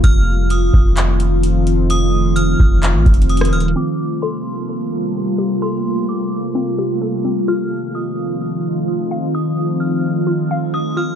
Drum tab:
HH |x-----------x-----------x-----x-----x-----x-----|x-----------x-----------x-----x-x-x-x-x-x-x-x-x-|------------------------------------------------|------------------------------------------------|
CP |------------------------x-----------------------|------------------------x-----------------------|------------------------------------------------|------------------------------------------------|
SD |------------------------------------------------|---------------------------------------r--------|------------------------------------------------|------------------------------------------------|
BD |o-----------------o-----------------------------|------------------o-----------o-----------------|------------------------------------------------|------------------------------------------------|

HH |------------------------------------------------|------------------------------------------------|
CP |------------------------------------------------|------------------------------------------------|
SD |------------------------------------------------|------------------------------------------------|
BD |------------------------------------------------|------------------------------------------------|